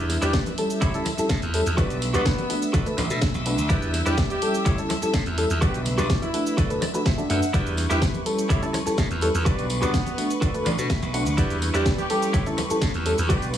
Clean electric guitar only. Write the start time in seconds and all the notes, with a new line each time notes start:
0.22 E4 G4 B4 D5
0.81 E4 G4 A4 C#5
1.05 muted clean electric guitar stroke
1.17 muted clean electric guitar stroke
1.77 F#4 G4 B4 D5
2.14 F#4 G4 B4 D5
2.73 F#4 A4 B4 D5
2.97 muted clean electric guitar stroke
3.10 muted clean electric guitar stroke
3.69 E4 G4 B4 D5
4.06 E4 G4 B4 D5
4.65 E4 G4 A4 C#5
4.89 muted clean electric guitar stroke
5.02 muted clean electric guitar stroke
5.61 F#4 G4 B4 D5
5.98 F#4 G4 B4 D5
6.57 F#4 A4 B4 D5
6.81 D5, muted clean electric guitar stroke
6.94 muted clean electric guitar stroke
7.06 E5
7.30 F#5
7.53 E4 G4 B4 D5
7.90 E4 G4 B4 E5
8.49 E4 G4 A4 C#5
8.73 muted clean electric guitar stroke
8.86 muted clean electric guitar stroke
9.45 F#4 G4 B4 D5
9.82 F#4 G4 B4 D5
10.41 F#4 A4 B4 D5
10.65 D5, muted clean electric guitar stroke
10.78 muted clean electric guitar stroke
10.90 E5
11.14 F#5
11.37 E4 G4 B4 D5
11.74 E4 G4 B4 D5
12.33 E4 G4 A4 C#5
12.57 muted clean electric guitar stroke
12.70 muted clean electric guitar stroke
13.29 F#4 G4 B4 D5